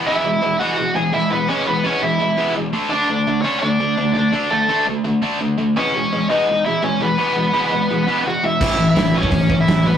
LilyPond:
<<
  \new Staff \with { instrumentName = "Overdriven electric guitar" } { \time 4/4 \key e \major \tempo 4 = 168 <e' e''>4. <fis' fis''>4 <gis' gis''>8 <e' e''>8 <b b'>8 | <cis' cis''>8 <b b'>8 <cis' cis''>8 <e' e''>4. r4 | <d' d''>4. <cis' cis''>8 <d' d''>4. <d' d''>8~ | <d' d''>8 <a a'>4 r2 r8 |
<cis' cis''>4. <dis' dis''>4 <e' e''>8 <cis' cis''>8 <b b'>8~ | <b b'>2. <fis' fis''>8 <e' e''>8~ | <e' e''>8. <e' e''>8. <cis' cis''>4~ <cis' cis''>16 <e' e''>8. <b b'>8 | }
  \new Staff \with { instrumentName = "Distorted electric guitar" } { \clef bass \time 4/4 \key e \major <e gis b>8 <e gis>8 <e gis>8 <e gis b>8 <e gis>8 <e gis>8 <e gis>8 <e gis>8 | <e gis b>8 <e gis>8 <e gis b>8 <e gis>8 <e gis>8 <e gis b>8 <e gis>8 <d a d'>8 | <d a d'>8 <d a>8 <d a>8 <d a d'>8 <d a>8 <d a>8 <d a>8 <d a>8 | <d a d'>8 <d a>8 <d a d'>8 <d a>8 <d a>8 <d a d'>8 <d a>8 <d a>8 |
<e gis b>8 <e gis>8 <e gis>8 <e gis b>8 <e gis>8 <e gis>8 <e gis>8 <e gis>8 | <e gis b>8 <e gis>8 <e gis b>8 <e gis>8 <e gis>8 <e gis b>8 <e gis>8 <e gis>8 | <a, e a>8 <a, e>8 <a, e>8 <a, e a>8 <a, e>8 <a, e>8 <a, e>8 <a, e>8 | }
  \new Staff \with { instrumentName = "Picked electric bass" } { \clef bass \time 4/4 \key e \major r1 | r1 | r1 | r1 |
r1 | r1 | a,,8 a,,8 a,,8 a,,8 a,,8 a,,8 a,,8 a,,8 | }
  \new DrumStaff \with { instrumentName = "Drums" } \drummode { \time 4/4 r4 r4 r4 r4 | r4 r4 r4 r4 | r4 r4 r4 r4 | r4 r4 r4 r4 |
r4 r4 r4 r4 | r4 r4 r4 r4 | <cymc bd>4 <hho sn>8. bd16 <hho bd>8 bd8 <hho sn>4 | }
>>